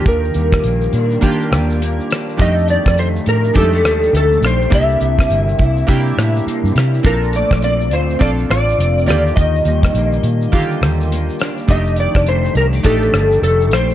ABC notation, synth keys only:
X:1
M:4/4
L:1/8
Q:"Swing 16ths" 1/4=103
K:Eblyd
V:1 name="Synth keys"
[B,DFG]2 z2 [B,DFG]3 z | [G,A,DEG]3 z [_A,=A,DEG]3 z | [B,D=EG]3 z [B,DEG]3 z | [CDFA]3 z [CDFA]3 [D,B,FG]- |
[D,B,FG]2 z2 [D,B,FG]3 z | [A,DEG]3 z [A,DEG]3 z |]